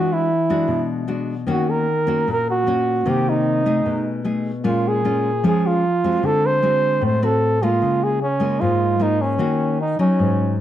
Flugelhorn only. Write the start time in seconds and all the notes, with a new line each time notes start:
Already playing: F#4
0.13 E4
1.51 F#4
1.70 A#4
2.32 A#4
2.50 F#4
3.09 G4
3.29 D#4
4.66 F4
4.88 G#4
5.47 G#4
5.67 F4
6.25 A4
6.46 C5
7.06 C5
7.24 A4
7.63 F4
8.04 G#4
8.22 C#4
8.60 F4
9.02 D#4
9.21 C#4
9.82 D#4
10.00 C#4